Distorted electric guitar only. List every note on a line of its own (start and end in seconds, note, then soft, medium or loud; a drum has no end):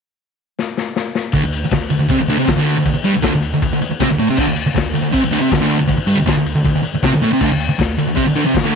1.34 1.43 D2 medium
1.34 1.43 D3 loud
1.44 1.59 D2 medium
1.65 muted distorted electric guitar stroke medium
1.74 1.88 D2 medium
1.91 1.99 D2 medium
2.00 2.09 D2 medium
2.09 2.19 C3 loud
2.09 2.20 C4 loud
2.20 2.27 D2 medium
2.28 2.38 D2 loud
2.28 2.38 D3 loud
2.38 2.46 C3 loud
2.38 2.48 C4 loud
2.46 2.55 D2 medium
2.56 2.75 D2 medium
2.56 2.76 D3 loud
2.77 2.84 D2 medium
2.85 2.93 D2 medium
2.94 muted distorted electric guitar stroke medium
3.04 3.14 G2 loud
3.04 3.14 G3 loud
3.14 3.21 D2 medium
3.22 3.32 D2 medium
3.22 3.32 D3 loud
3.35 3.49 D2 medium
3.54 3.62 D2 medium
3.63 3.72 D2 medium
3.73 3.81 D2 medium
3.82 muted distorted electric guitar stroke medium
3.91 muted distorted electric guitar stroke medium
4.00 4.09 C3 loud
4.00 4.09 C4 loud
4.10 4.19 D2 medium
4.19 4.28 A2 medium
4.19 4.29 A3 medium
4.29 4.38 C3 medium
4.29 4.38 C4 medium
4.38 4.46 D2 medium
4.38 4.48 D3 loud
4.47 4.62 D2 medium
4.67 muted distorted electric guitar stroke medium
4.75 4.90 D2 medium
4.94 5.02 D2 medium
5.03 5.12 D2 medium
5.13 5.22 C3 medium
5.13 5.22 C4 loud
5.22 5.30 D2 medium
5.31 5.40 D2 medium
5.31 5.42 D3 loud
5.40 5.50 C3 loud
5.40 5.51 C4 loud
5.51 5.60 D2 medium
5.61 5.79 D2 medium
5.61 5.80 D3 loud
5.80 5.86 D2 medium
5.87 5.96 D2 medium
5.97 muted distorted electric guitar stroke medium
6.07 6.16 G2 loud
6.07 6.17 G3 loud
6.16 6.25 D2 medium
6.26 6.35 D2 medium
6.26 6.36 D3 loud
6.38 6.52 D2 medium
6.55 6.63 D2 medium
6.64 6.74 D2 medium
6.76 6.82 D2 medium
6.83 muted distorted electric guitar stroke medium
6.94 muted distorted electric guitar stroke medium
7.03 7.12 C3 medium
7.03 7.12 C4 loud
7.14 7.22 D2 medium
7.22 7.31 A2 medium
7.22 7.31 A3 loud
7.32 7.40 C3 medium
7.32 7.41 C4 medium
7.41 7.50 D2 medium
7.41 7.50 D3 loud
7.52 7.66 D2 medium
7.69 muted distorted electric guitar stroke medium
7.79 7.94 D2 medium
7.98 8.06 D2 medium
8.07 8.15 D2 medium
8.16 8.25 C3 medium
8.16 8.25 C4 loud
8.25 8.34 D2 medium
8.35 8.44 D2 loud
8.35 8.44 D3 loud
8.45 8.53 C3 loud
8.45 8.54 C4 loud
8.55 8.62 D2 medium
8.63 8.75 D2 medium
8.63 8.75 D3 loud